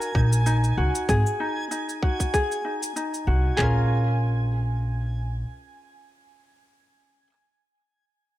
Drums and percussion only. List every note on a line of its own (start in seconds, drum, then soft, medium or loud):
0.02 shaker soft
0.15 kick medium
0.33 shaker medium
0.46 shaker soft
0.64 shaker soft
0.95 shaker medium
1.09 kick loud
1.09 shaker soft
1.26 shaker soft
1.72 shaker soft
1.89 shaker soft
2.03 kick medium
2.20 kick soft
2.20 shaker medium
2.34 kick loud
2.34 shaker soft
2.52 shaker soft
2.83 shaker medium
2.97 shaker soft
3.14 shaker soft
3.59 kick medium
3.59 clap medium
3.59 floor tom medium